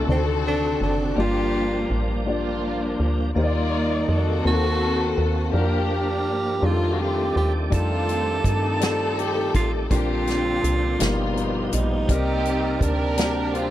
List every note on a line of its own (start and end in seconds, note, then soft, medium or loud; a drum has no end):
0.00 0.10 A#2 soft
0.00 0.10 A3 medium
0.00 1.16 C4 medium
0.00 0.10 F4 medium
0.00 1.15 F#4 medium
0.00 0.09 A4 soft
0.00 1.18 A4 medium
0.00 0.10 D5 medium
0.07 0.77 D2 medium
0.07 1.17 C3 soft
0.07 1.13 D3 soft
0.07 0.99 D#3 soft
0.07 0.99 C4 soft
0.07 1.18 C4 soft
0.07 1.15 D4 soft
0.07 0.15 D#4 soft
0.07 0.99 F#4 soft
0.07 1.00 A4 soft
0.07 1.00 D5 medium
0.11 0.27 C4 medium
0.11 1.21 F#4 medium
0.48 0.80 D4 medium
0.81 1.15 F#1 medium
0.81 1.16 D4 medium
1.15 1.86 G1 medium
1.15 2.22 G2 soft
1.15 3.31 F3 soft
1.15 2.07 A#3 medium
1.15 3.31 A#3 soft
1.15 3.31 D4 soft
1.15 2.08 D4 soft
1.15 2.08 F4 medium
1.15 3.31 G4 soft
1.15 1.90 G4 medium
1.15 2.09 G4 medium
1.15 2.09 D5 medium
1.20 2.24 A#3 medium
1.20 2.24 D4 soft
1.20 1.97 F4 medium
1.90 2.96 A1 medium
2.25 3.17 A#3 soft
2.25 3.17 D4 soft
2.25 3.18 F4 soft
2.25 3.18 G4 soft
2.25 3.18 D5 medium
2.30 3.34 A#3 soft
2.30 3.33 D4 soft
2.30 3.07 F4 medium
3.00 3.33 D2 medium
3.35 4.05 D#2 medium
3.35 4.41 D#3 soft
3.35 4.42 D#3 soft
3.35 4.26 A#3 medium
3.35 4.42 A#3 soft
3.35 4.42 A#3 medium
3.35 4.27 D#4 medium
3.35 4.42 D#4 medium
3.35 3.43 F4 soft
3.35 4.27 G4 medium
3.35 3.43 C5 medium
3.35 4.45 D5 soft
3.35 4.42 D5 medium
3.39 4.49 G3 soft
3.39 4.06 F4 medium
3.44 4.31 D5 medium
4.09 4.42 F2 medium
4.09 5.51 C4 medium
4.09 5.51 F#4 medium
4.09 5.55 A4 medium
4.43 5.14 D#2 medium
4.43 5.53 D#3 soft
4.43 5.51 D#3 soft
4.43 5.52 A#3 soft
4.43 5.36 A#3 medium
4.43 5.53 C4 soft
4.43 5.36 C4 soft
4.43 5.36 D#4 soft
4.43 5.53 F#4 medium
4.43 5.37 F#4 soft
4.47 5.15 F#4 medium
4.47 4.52 A#4 soft
4.54 5.40 C5 medium
5.18 5.51 D#2 medium
5.53 6.28 F2 medium
5.53 6.63 F3 soft
5.53 6.63 A#3 soft
5.53 6.60 A#3 medium
5.53 6.44 D4 medium
5.53 6.63 D4 soft
5.53 6.60 D4 medium
5.53 6.45 F4 medium
5.53 6.27 G4 medium
5.53 6.63 A#4 soft
5.53 6.45 A#4 medium
5.57 6.67 G4 medium
6.27 6.60 G2 medium
6.62 7.32 F2 medium
6.62 9.86 D#3 soft
6.62 7.53 G3 soft
6.62 9.87 A3 soft
6.62 7.69 A3 soft
6.62 7.69 C4 soft
6.62 7.54 D4 soft
6.62 7.54 D#4 soft
6.62 7.41 F4 medium
6.62 7.54 F4 soft
6.62 6.94 F4 medium
6.62 9.87 G4 soft
6.62 6.70 G#4 soft
6.62 9.86 D5 soft
6.71 7.58 A4 medium
6.92 7.02 F#4 medium
7.01 7.37 G4 medium
7.36 7.70 D#2 medium
7.36 7.53 G4 medium
7.70 8.41 F2 medium
7.70 8.62 G3 medium
7.70 8.78 A3 medium
7.70 8.44 C4 medium
7.70 8.62 D4 medium
7.70 8.63 D#4 medium
7.70 8.63 F4 medium
7.70 8.41 F4 medium
7.70 8.63 G4 medium
7.70 kick medium
7.70 closed hi-hat medium
7.75 8.79 A4 medium
8.09 closed hi-hat soft
8.44 9.50 G2 medium
8.44 9.87 C4 medium
8.44 9.87 D#4 medium
8.44 9.91 A4 loud
8.44 kick medium
8.44 closed hi-hat soft
8.80 9.72 G3 soft
8.80 9.72 D#4 soft
8.80 9.73 F4 soft
8.80 9.73 A4 medium
8.80 9.20 A4 medium
8.80 9.72 D5 soft
8.80 snare medium
8.80 closed hi-hat medium
9.19 9.55 G4 medium
9.19 closed hi-hat soft
9.55 9.88 A1 medium
9.55 9.72 F4 medium
9.55 kick medium
9.55 closed hi-hat medium
9.90 10.59 A#1 loud
9.90 10.96 A#2 soft
9.90 11.00 D3 soft
9.90 10.81 G3 medium
9.90 11.00 A#3 soft
9.90 10.82 C4 medium
9.90 11.00 C4 soft
9.90 10.97 C4 medium
9.90 10.82 D4 medium
9.90 10.97 D4 medium
9.90 11.42 F4 medium
9.90 10.82 F4 medium
9.90 9.97 F#4 soft
9.90 10.65 G4 medium
9.90 10.83 A#4 medium
9.90 kick medium
9.90 closed hi-hat medium
9.97 10.99 G4 medium
10.27 snare soft
10.27 closed hi-hat soft
10.64 10.97 C2 medium
10.64 closed hi-hat soft
10.99 11.69 G1 medium
10.99 12.05 G2 soft
10.99 11.90 B2 soft
10.99 12.09 F3 soft
10.99 11.90 G3 medium
10.99 12.09 G3 soft
10.99 12.06 B3 soft
10.99 11.91 D#4 soft
10.99 12.09 D#4 soft
10.99 11.91 F4 soft
10.99 12.09 G4 medium
10.99 11.91 A#4 medium
10.99 snare medium
10.99 closed hi-hat medium
11.03 12.07 A#3 medium
11.03 11.80 F4 medium
11.37 closed hi-hat soft
11.72 12.06 A#1 medium
11.72 12.85 D#4 medium
11.72 closed hi-hat medium
12.08 12.78 C2 medium
12.08 13.70 C3 soft
12.08 13.15 C3 soft
12.08 12.99 G3 medium
12.08 13.70 C4 soft
12.08 13.00 C4 medium
12.08 13.15 C4 medium
12.08 13.00 D#4 medium
12.08 12.79 G4 medium
12.08 13.70 A#4 soft
12.08 13.01 A#4 medium
12.08 13.70 D5 soft
12.08 13.00 D5 medium
12.08 kick medium
12.08 closed hi-hat medium
12.12 13.16 A#3 medium
12.45 closed hi-hat soft
12.81 13.70 D2 medium
12.81 13.70 D4 medium
12.81 13.57 D4 medium
12.81 13.70 G4 medium
12.81 13.55 A#4 medium
12.81 kick medium
12.81 closed hi-hat soft
13.16 13.70 G3 soft
13.16 13.70 A#3 soft
13.16 13.70 C4 soft
13.16 13.70 D4 soft
13.16 13.25 F#4 soft
13.16 snare medium
13.16 closed hi-hat medium
13.25 13.70 G4 medium
13.54 13.70 C4 medium
13.54 13.70 F4 medium
13.54 closed hi-hat soft